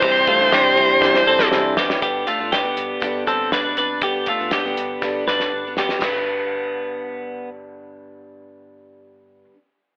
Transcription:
<<
  \new Staff \with { instrumentName = "Lead electric guitar" } { \time 4/4 \key g \mixolydian \tempo 4 = 120 c''2. r4 | r1 | r1 | r1 |
r1 | }
  \new Staff \with { instrumentName = "Synth keys" } { \time 4/4 \key g \mixolydian <d' e' g' c''>8 r8 <d' e' g' d''>8 r8 <d' e' g' c''>8 r8 <d' e' g' c''>8 r8 | r1 | r1 | r1 |
r1 | }
  \new Staff \with { instrumentName = "Clean electric guitar" } { \time 4/4 \key g \mixolydian <c' g'>8 <a f'>8 <c' g'>4. <c' a'>4 <b g'>8 | <b g'>8 <a f'>8 <b g'>4. <c' a'>8 <d' b'>8 <d' b'>8 | <b g'>8 <a f'>8 <b g'>4. <d' b'>4 <b g'>8 | b2. r4 |
r1 | }
  \new Staff \with { instrumentName = "Steel-string acoustic guitar" } { \clef bass \time 4/4 \key g \mixolydian <e g d' e'>8. <c e g d' e'>8. <e g d' e'>8 <c e g d' e'>4 <c e g d' e'>8 <e g d' e'>8 | <d g b d'>8. <g b d'>8 <g, d g b d'>8. <g, d g b d'>8 <d g b d'>8. <g b d'>8. | <d g b d'>8. <g b d'>8 <g, d g b d'>8. <g, d g b d'>8 <d g b d'>8. <g b d'>8. | <g, d g b d'>1~ |
<g, d g b d'>1 | }
  \new Staff \with { instrumentName = "Tine electric piano" } { \clef bass \time 4/4 \key g \mixolydian c,8 c,8 c,8 c,8 c,8 c,8 c,8 f,8 | g,8 r16 g,16 g,8 g,8 g,8 g,8 g,8 f,8 | g,8 r16 g,16 g,8 g,8 g,8 g,8 g,8 f,8 | g,1~ |
g,1 | }
  \new DrumStaff \with { instrumentName = "Drums" } \drummode { \time 4/4 <bd cymr>8 <bd cymr>8 <cymr sn>8 cymr8 <bd sn>16 sn8 sn16 sn8 sn16 sn16 | <hh bd>8 hh8 <hh sn>8 hh8 <hh bd>8 <hh bd>8 <hh sn>8 hh8 | <hh bd>8 <hh bd>8 <hh sn>8 hh8 <bd sn>8 sn16 sn16 r8 sn16 sn16 | <cymc sn tomfh>4 r4 r4 r4 |
r4 r4 r4 r4 | }
>>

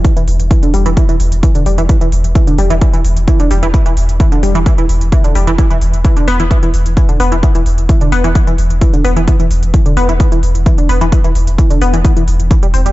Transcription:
<<
  \new Staff \with { instrumentName = "Synth arpeggio sound" } { \clef bass \time 4/4 \key e \minor \tempo 4 = 130 e16 e16 r8 e16 d16 g16 e16 e16 e16 r8 e16 d16 g16 e16 | e16 e16 r8 e16 d16 g16 e16 e16 e16 r8 e16 d16 g16 e16 | e16 e16 r8 e16 d16 g16 e16 e16 e16 r8 e16 d16 g16 e16 | e16 e16 r8 e16 d16 b16 e16 e16 e16 r8 e16 d16 b16 e16 |
e16 e16 r8 e16 d16 b16 e16 e16 e16 r8 e16 d16 b16 e16 | e16 e16 r8 e16 d16 b16 e16 e16 e16 r8 e16 d16 b16 e16 | e16 e16 r8 e16 d16 b16 e16 e16 e16 r8 e16 g16 c'16 g16 | }
  \new Staff \with { instrumentName = "Sub bass" } { \clef bass \time 4/4 \key e \minor r16 e,,16 e,,16 e,,16 r16 e,,16 e,,16 e,,16 r16 e,,16 e,,16 e,,16 r16 e,,16 e,,16 e,,16 | r16 e,,16 e,,16 e,,16 r16 e,,16 e,,16 e,,16 r16 e,,16 e,,16 e,,16 r16 e,,16 e,,16 e,,16 | r16 e,,16 e,,16 e,,16 r16 e,,16 e,,16 e,,16 r16 e,,16 e,,16 e,,16 r16 e,,16 e,,16 e,,16 | r16 e,,16 e,,16 e,,16 r16 e,,16 e,,16 e,,16 r16 e,,16 e,,16 e,,16 r16 e,,16 e,,16 e,,16 |
r16 e,,16 e,,16 e,,16 r16 e,,16 e,,16 e,,16 r16 e,,16 e,,16 e,,16 r16 e,,16 e,,16 e,,16 | r16 e,,16 e,,16 e,,16 r16 e,,16 e,,16 e,,16 r16 e,,16 e,,16 e,,16 r16 e,,16 e,,16 e,,16 | r16 e,,16 e,,16 e,,16 r16 e,,16 e,,16 e,,16 r16 e,,16 e,,16 e,,16 r16 e,,16 e,,16 e,,16 | }
  \new DrumStaff \with { instrumentName = "Drums" } \drummode { \time 4/4 <hh bd>16 hh16 hho16 hh16 <hh bd>16 hh16 hho16 hh16 <hh bd>16 hh16 hho16 hh16 <hh bd>16 hh16 hho16 hh16 | <hh bd>16 hh16 hho16 hh16 <hh bd>16 hh16 hho16 hh16 <hh bd>16 hh16 hho16 hh16 <hh bd>16 hh16 hho16 hh16 | <hh bd>16 hh16 hho16 hh16 <hh bd>16 hh16 hho16 hh16 <hh bd>16 hh16 hho16 hh16 <hh bd>16 hh16 hho16 hh16 | <hh bd>16 hh16 hho16 hh16 <hh bd>16 hh16 hho16 hh16 <hh bd>16 hh16 hho16 hh16 <hh bd>16 hh16 hho16 hh16 |
<hh bd>16 hh16 hho16 hh16 <hh bd>16 hh16 hho16 hh16 <hh bd>16 hh16 hho16 hh16 <hh bd>16 hh16 hho16 hh16 | <hh bd>16 hh16 hho16 hh16 <hh bd>16 hh16 hho16 hh16 <hh bd>16 hh16 hho16 hh16 <hh bd>16 hh16 hho16 hh16 | <hh bd>16 hh16 hho16 hh16 <hh bd>16 hh16 hho16 hh16 <hh bd>16 hh16 hho16 hh16 <hh bd>16 hh16 hho16 hh16 | }
>>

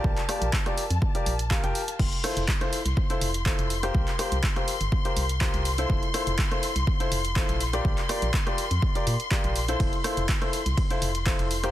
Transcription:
<<
  \new Staff \with { instrumentName = "String section" } { \time 4/4 \key f \major \tempo 4 = 123 a''1 | c'''1~ | c'''1~ | c'''1~ |
c'''1~ | c'''1 | }
  \new Staff \with { instrumentName = "Upright piano" } { \time 4/4 \key f \major <f' g' bes' d''>16 r16 <f' g' bes' d''>16 r8 <f' g' bes' d''>16 r8. <f' g' bes' d''>16 r8 <f' g' bes' f''>16 <f' g' bes' g''>16 r8 | r8 <e' f' a' c''>16 r8 <e' f' a' c''>16 r8. <e' f' a' c''>16 r8 <e' f' a' c''>8 r16 <f' g' bes' c''>16~ | <f' g' bes' c''>16 r16 <f' g' bes' c''>16 r8 <f' g' bes' c''>16 r8. <f' g' bes' c''>16 r8 <f' g' bes' c''>8 r16 <e' f' a' c''>16~ | <e' f' a' c''>16 r16 <e' f' a' c''>16 r8 <e' f' a' c''>16 r8. <e' f' a' c''>16 r8 <e' f' a' c''>8 r16 <f' g' bes' d''>16~ |
<f' g' bes' d''>16 r16 <f' g' bes' d''>16 r8 <f' g' bes' d''>16 r8. <f' g' bes' d''>16 r8 <f' g' bes' d''>8 r16 <e' f' a' c''>16~ | <e' f' a' c''>16 r16 <e' f' a' c''>16 r8 <e' f' a' c''>16 r8. <e' f' a' c''>16 r8 <e' f' a' c''>8 r16 <f' g' bes' c''>16 | }
  \new Staff \with { instrumentName = "FM bass" } { \clef bass \time 4/4 \key f \major bes,,16 r8 bes,,16 r8. f,16 r8 bes,,8. f,,16 r8 | f,,16 r8 f,,16 r8. c,16 r8 f,,8. f,,8. | c,16 r8 c,16 r8. g,,16 r8 c,8. c,8. | f,,16 r8 f,,16 r8. c,16 r8 f,,8. bes,,8. |
bes,,16 r8 bes,,16 r8. f,16 r8 bes,16 r8 bes,,8. | f,,16 r8 f,,16 r8. c,16 r8 f,,8. f,,8. | }
  \new DrumStaff \with { instrumentName = "Drums" } \drummode { \time 4/4 bd16 <hc hh>16 <hho ss>16 hh16 <hc bd>16 <hh ss>16 hho16 hh16 bd16 hh16 hho16 hh16 <hc bd>16 hh16 hho16 hh16 | <cymc bd>16 hh16 <hho ss>16 hh16 <hc bd>16 <hh ss>16 hho16 hh16 bd16 hh16 hho16 hh16 <hc bd>16 hh16 hho16 <hh ss>16 | bd16 <hc hh>16 <hho ss>16 hh16 <hc bd>16 <hh ss>16 hho16 hh16 bd16 hh16 hho16 hh16 <hc bd>16 hh16 hho16 hh16 | bd16 hh16 <hho ss>16 hh16 <hc bd>16 <hh ss>16 hho16 hh16 bd16 hh16 hho16 hh16 <hc bd>16 hh16 hho16 <hh ss>16 |
bd16 <hc hh>16 <hho ss>16 hh16 <hc bd>16 <hh ss>16 hho16 hh16 bd16 hh16 hho16 hh16 <hc bd>16 hh16 hho16 hh16 | <bd cymr>16 hh16 <hho ss>16 hh16 <hc bd cymr>16 <hh ss>16 hho16 hh16 <bd cymr>16 hh16 hho16 hh16 <hc bd cymr>16 hh16 hho16 <hh ss>16 | }
>>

